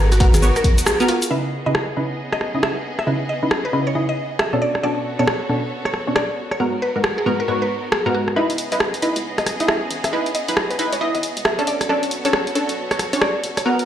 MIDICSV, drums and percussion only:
0, 0, Header, 1, 2, 480
1, 0, Start_track
1, 0, Tempo, 441176
1, 1420, Time_signature, 4, 2, 24, 8
1, 15070, End_track
2, 0, Start_track
2, 0, Title_t, "Drums"
2, 129, Note_on_c, 9, 37, 32
2, 129, Note_on_c, 9, 42, 56
2, 129, Note_on_c, 9, 69, 32
2, 219, Note_on_c, 9, 46, 99
2, 220, Note_on_c, 9, 36, 105
2, 238, Note_off_c, 9, 37, 0
2, 238, Note_off_c, 9, 42, 0
2, 238, Note_off_c, 9, 69, 0
2, 328, Note_off_c, 9, 36, 0
2, 328, Note_off_c, 9, 46, 0
2, 370, Note_on_c, 9, 42, 68
2, 370, Note_on_c, 9, 69, 62
2, 461, Note_off_c, 9, 69, 0
2, 461, Note_on_c, 9, 69, 51
2, 479, Note_off_c, 9, 42, 0
2, 570, Note_off_c, 9, 69, 0
2, 610, Note_on_c, 9, 37, 32
2, 610, Note_on_c, 9, 42, 38
2, 610, Note_on_c, 9, 69, 30
2, 700, Note_on_c, 9, 36, 60
2, 700, Note_on_c, 9, 46, 113
2, 718, Note_off_c, 9, 37, 0
2, 718, Note_off_c, 9, 42, 0
2, 718, Note_off_c, 9, 69, 0
2, 808, Note_off_c, 9, 36, 0
2, 809, Note_off_c, 9, 46, 0
2, 850, Note_on_c, 9, 42, 66
2, 850, Note_on_c, 9, 69, 62
2, 941, Note_off_c, 9, 69, 0
2, 941, Note_on_c, 9, 37, 114
2, 941, Note_on_c, 9, 69, 52
2, 958, Note_off_c, 9, 42, 0
2, 1049, Note_off_c, 9, 37, 0
2, 1049, Note_off_c, 9, 69, 0
2, 1090, Note_on_c, 9, 42, 38
2, 1090, Note_on_c, 9, 69, 31
2, 1180, Note_on_c, 9, 46, 97
2, 1199, Note_off_c, 9, 42, 0
2, 1199, Note_off_c, 9, 69, 0
2, 1289, Note_off_c, 9, 46, 0
2, 1329, Note_on_c, 9, 42, 68
2, 1329, Note_on_c, 9, 69, 62
2, 1438, Note_off_c, 9, 42, 0
2, 1438, Note_off_c, 9, 69, 0
2, 1901, Note_on_c, 9, 37, 104
2, 2010, Note_off_c, 9, 37, 0
2, 2529, Note_on_c, 9, 37, 64
2, 2622, Note_off_c, 9, 37, 0
2, 2622, Note_on_c, 9, 37, 54
2, 2730, Note_off_c, 9, 37, 0
2, 2861, Note_on_c, 9, 37, 115
2, 2970, Note_off_c, 9, 37, 0
2, 3250, Note_on_c, 9, 37, 53
2, 3359, Note_off_c, 9, 37, 0
2, 3819, Note_on_c, 9, 37, 109
2, 3928, Note_off_c, 9, 37, 0
2, 4779, Note_on_c, 9, 37, 117
2, 4888, Note_off_c, 9, 37, 0
2, 5168, Note_on_c, 9, 37, 56
2, 5277, Note_off_c, 9, 37, 0
2, 5739, Note_on_c, 9, 37, 119
2, 5847, Note_off_c, 9, 37, 0
2, 6368, Note_on_c, 9, 37, 62
2, 6459, Note_off_c, 9, 37, 0
2, 6459, Note_on_c, 9, 37, 53
2, 6568, Note_off_c, 9, 37, 0
2, 6699, Note_on_c, 9, 37, 120
2, 6807, Note_off_c, 9, 37, 0
2, 7087, Note_on_c, 9, 37, 52
2, 7196, Note_off_c, 9, 37, 0
2, 7658, Note_on_c, 9, 37, 113
2, 7767, Note_off_c, 9, 37, 0
2, 8618, Note_on_c, 9, 37, 119
2, 8727, Note_off_c, 9, 37, 0
2, 9007, Note_on_c, 9, 37, 53
2, 9115, Note_off_c, 9, 37, 0
2, 9246, Note_on_c, 9, 42, 50
2, 9337, Note_on_c, 9, 46, 108
2, 9355, Note_off_c, 9, 42, 0
2, 9446, Note_off_c, 9, 46, 0
2, 9486, Note_on_c, 9, 42, 61
2, 9577, Note_on_c, 9, 37, 115
2, 9595, Note_off_c, 9, 42, 0
2, 9686, Note_off_c, 9, 37, 0
2, 9727, Note_on_c, 9, 42, 50
2, 9818, Note_on_c, 9, 46, 93
2, 9836, Note_off_c, 9, 42, 0
2, 9927, Note_off_c, 9, 46, 0
2, 9967, Note_on_c, 9, 42, 63
2, 10076, Note_off_c, 9, 42, 0
2, 10207, Note_on_c, 9, 37, 68
2, 10207, Note_on_c, 9, 42, 34
2, 10298, Note_off_c, 9, 37, 0
2, 10298, Note_on_c, 9, 37, 56
2, 10298, Note_on_c, 9, 46, 106
2, 10316, Note_off_c, 9, 42, 0
2, 10407, Note_off_c, 9, 37, 0
2, 10407, Note_off_c, 9, 46, 0
2, 10446, Note_on_c, 9, 42, 61
2, 10536, Note_on_c, 9, 37, 116
2, 10555, Note_off_c, 9, 42, 0
2, 10645, Note_off_c, 9, 37, 0
2, 10777, Note_on_c, 9, 46, 93
2, 10886, Note_off_c, 9, 46, 0
2, 10925, Note_on_c, 9, 37, 56
2, 10925, Note_on_c, 9, 42, 63
2, 11034, Note_off_c, 9, 37, 0
2, 11034, Note_off_c, 9, 42, 0
2, 11166, Note_on_c, 9, 42, 49
2, 11257, Note_on_c, 9, 46, 105
2, 11275, Note_off_c, 9, 42, 0
2, 11366, Note_off_c, 9, 46, 0
2, 11407, Note_on_c, 9, 42, 61
2, 11497, Note_on_c, 9, 37, 115
2, 11516, Note_off_c, 9, 42, 0
2, 11606, Note_off_c, 9, 37, 0
2, 11648, Note_on_c, 9, 42, 50
2, 11739, Note_on_c, 9, 46, 93
2, 11756, Note_off_c, 9, 42, 0
2, 11848, Note_off_c, 9, 46, 0
2, 11887, Note_on_c, 9, 42, 64
2, 11996, Note_off_c, 9, 42, 0
2, 12127, Note_on_c, 9, 42, 34
2, 12220, Note_on_c, 9, 46, 103
2, 12236, Note_off_c, 9, 42, 0
2, 12328, Note_off_c, 9, 46, 0
2, 12369, Note_on_c, 9, 42, 59
2, 12458, Note_on_c, 9, 37, 126
2, 12478, Note_off_c, 9, 42, 0
2, 12567, Note_off_c, 9, 37, 0
2, 12608, Note_on_c, 9, 42, 35
2, 12698, Note_on_c, 9, 46, 93
2, 12717, Note_off_c, 9, 42, 0
2, 12807, Note_off_c, 9, 46, 0
2, 12848, Note_on_c, 9, 37, 56
2, 12848, Note_on_c, 9, 42, 61
2, 12957, Note_off_c, 9, 37, 0
2, 12957, Note_off_c, 9, 42, 0
2, 13088, Note_on_c, 9, 42, 49
2, 13178, Note_on_c, 9, 46, 101
2, 13197, Note_off_c, 9, 42, 0
2, 13287, Note_off_c, 9, 46, 0
2, 13328, Note_on_c, 9, 42, 60
2, 13418, Note_on_c, 9, 37, 119
2, 13436, Note_off_c, 9, 42, 0
2, 13527, Note_off_c, 9, 37, 0
2, 13569, Note_on_c, 9, 42, 48
2, 13659, Note_on_c, 9, 46, 92
2, 13677, Note_off_c, 9, 42, 0
2, 13768, Note_off_c, 9, 46, 0
2, 13808, Note_on_c, 9, 42, 61
2, 13917, Note_off_c, 9, 42, 0
2, 14047, Note_on_c, 9, 37, 69
2, 14047, Note_on_c, 9, 42, 34
2, 14138, Note_off_c, 9, 37, 0
2, 14138, Note_on_c, 9, 37, 56
2, 14138, Note_on_c, 9, 46, 97
2, 14156, Note_off_c, 9, 42, 0
2, 14246, Note_off_c, 9, 37, 0
2, 14246, Note_off_c, 9, 46, 0
2, 14287, Note_on_c, 9, 42, 61
2, 14378, Note_on_c, 9, 37, 122
2, 14396, Note_off_c, 9, 42, 0
2, 14487, Note_off_c, 9, 37, 0
2, 14618, Note_on_c, 9, 46, 85
2, 14727, Note_off_c, 9, 46, 0
2, 14767, Note_on_c, 9, 37, 57
2, 14767, Note_on_c, 9, 42, 62
2, 14876, Note_off_c, 9, 37, 0
2, 14876, Note_off_c, 9, 42, 0
2, 15006, Note_on_c, 9, 42, 50
2, 15070, Note_off_c, 9, 42, 0
2, 15070, End_track
0, 0, End_of_file